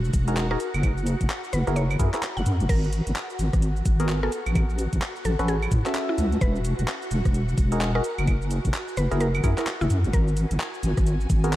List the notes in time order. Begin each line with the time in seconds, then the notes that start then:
Already playing: E1 F#4 F#5
0.05 shaker
0.13 E1, kick, closed hi-hat, shaker
0.28 D#4 F#4 G#4 A#4, closed hi-hat, shaker
0.37 clap, closed hi-hat, shaker
0.51 D#4 F#4 G#4 A#4, cross-stick
0.60 closed hi-hat, shaker
0.74 F#1, closed hi-hat, claves, shaker
0.83 kick, closed hi-hat, claves, shaker
0.98 shaker
1.06 closed hi-hat, shaker
1.21 F#1, kick, closed hi-hat, shaker
1.30 clap, shaker
1.44 shaker
1.53 F#1 B4, closed hi-hat, shaker
1.67 F#1 E4 F#4 G#4 A#4, cross-stick, closed hi-hat, shaker
1.76 C#5, closed hi-hat, shaker
1.91 claves, shaker
2.00 F#2 E4 F#4 G#4 A#4, kick, closed hi-hat, shaker
2.14 E4 F#4 G#4 A#4, cross-stick, clap, closed hi-hat, shaker
2.23 clap, closed hi-hat, shaker
2.37 F#1 F#5, shaker
2.46 F#2, closed hi-hat, shaker
2.60 F#1, closed hi-hat, shaker
2.69 G#1 F#4 A#4 F#5, kick, closed hi-hat, crash, shaker
2.84 shaker
2.93 closed hi-hat, shaker
3.07 G#1, closed hi-hat, shaker
3.16 clap, shaker
3.30 shaker
3.39 G#1, closed hi-hat, shaker
3.53 G#1, kick, cross-stick, closed hi-hat, shaker
3.62 closed hi-hat, shaker
3.77 shaker
3.86 G#1, kick, closed hi-hat, shaker
4.00 B3 F#4 G#4 A#4, closed hi-hat, shaker
4.09 clap, closed hi-hat, shaker
4.23 B3 F#4 G#4 A4 A#4, cross-stick
4.32 closed hi-hat, shaker
4.46 A1, closed hi-hat, claves, shaker
4.55 kick, closed hi-hat, claves, shaker
4.70 shaker
4.79 closed hi-hat, shaker
4.93 A1, kick, closed hi-hat, shaker
5.02 clap, shaker
5.16 shaker
5.25 A1 A4, closed hi-hat, shaker
5.39 A1 C#4 F#4 A4 B4, cross-stick, closed hi-hat, shaker
5.48 G#4, closed hi-hat, shaker
5.63 claves, shaker
5.72 A2, kick, closed hi-hat, shaker
5.86 C#4 F#4 A4 E5, cross-stick, clap, closed hi-hat, shaker
5.95 clap, closed hi-hat, shaker
6.09 E4
6.18 C#2, closed hi-hat, shaker
6.32 closed hi-hat, shaker
6.41 E1 B4, kick, closed hi-hat, shaker
6.56 shaker
6.65 closed hi-hat, shaker
6.79 E1, closed hi-hat, shaker
6.88 clap, shaker
7.02 shaker
7.11 E1, closed hi-hat, shaker
7.25 E1, kick, cross-stick, closed hi-hat, shaker
7.34 closed hi-hat, shaker
7.49 shaker
7.58 E1, kick, closed hi-hat, shaker
7.72 D#4 F#4 G#4 A#4, closed hi-hat, shaker
7.81 clap, closed hi-hat, shaker
7.95 D#4 F#4 G#4 A#4, cross-stick
8.04 closed hi-hat, shaker
8.18 F#1, closed hi-hat, claves, shaker
8.27 kick, closed hi-hat, claves, shaker
8.42 shaker
8.51 closed hi-hat, shaker
8.65 F#1, kick, closed hi-hat, shaker
8.74 clap, shaker
8.88 shaker
8.97 F#1 B4, closed hi-hat, shaker
9.11 F#1 E4 F#4 G#4 A#4, cross-stick, closed hi-hat, shaker
9.21 A#4, closed hi-hat, shaker
9.35 claves, shaker
9.44 F#2 E4 F#4 G#4 A#4, kick, closed hi-hat, claves, shaker
9.58 E4 F#4 G#4 A#4, cross-stick, clap, closed hi-hat, shaker
9.67 clap, closed hi-hat, shaker
9.81 F#1 E4, shaker
9.90 F#2, closed hi-hat, shaker
10.04 F#1, closed hi-hat, shaker
10.13 G#1 F#4 A#4 G#5, kick, closed hi-hat, shaker
10.28 shaker
10.37 closed hi-hat, shaker
10.51 G#1, closed hi-hat, shaker
10.60 clap, shaker
10.74 shaker
10.83 G#1, closed hi-hat, shaker
10.97 G#1, kick, cross-stick, closed hi-hat, shaker
11.07 closed hi-hat, shaker
11.21 shaker
11.30 G#1, kick, closed hi-hat, shaker
11.44 B3 F#4 G#4 A#4, closed hi-hat, shaker